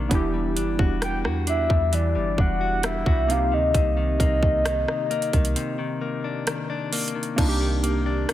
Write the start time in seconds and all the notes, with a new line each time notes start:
Already playing: C3 D#3 A#3 D4
0.09 E1 E3 B3 D4 E4, kick, closed hi-hat
0.15 G4
0.34 G3
0.56 F#1 D4, closed hi-hat
0.79 E1 F#4, kick
1.02 G3 G5, cross-stick, closed hi-hat
1.24 E2 F#4, cross-stick
1.47 D4 E5, closed hi-hat
1.70 E2 G3, kick
1.93 E3 D5, closed hi-hat
2.15 G1 G3
2.38 E1 D4 F#5, kick
2.61 F#4
2.83 G3 E5, cross-stick, closed hi-hat
3.06 C2 F#4, kick
3.27 C3 A#3 C4 D#4, closed hi-hat
3.31 G4 F5
3.52 D2 D#3 D#5
3.74 C2 C3, kick, closed hi-hat
3.97 D#3
4.20 C2 A#3, kick, closed hi-hat
4.43 kick
4.65 D#3, cross-stick, closed hi-hat
4.88 cross-stick
5.11 A#3, closed hi-hat
5.22 closed hi-hat
5.33 C2 D#3, kick, closed hi-hat
5.45 closed hi-hat
5.56 C3, closed hi-hat
5.79 D#3
6.01 A#3
6.24 D4
6.47 D#3, cross-stick, closed hi-hat
6.70 D4
6.92 A#3, closed hi-hat, open hi-hat
7.08 closed hi-hat
7.15 D#3
7.23 closed hi-hat
7.36 C2 C3 A#3 D4 D#4, kick, closed hi-hat, crash
7.42 F4
7.49 G4
7.61 D#3
7.83 A#3, closed hi-hat
8.06 D4
8.29 D#3, cross-stick, closed hi-hat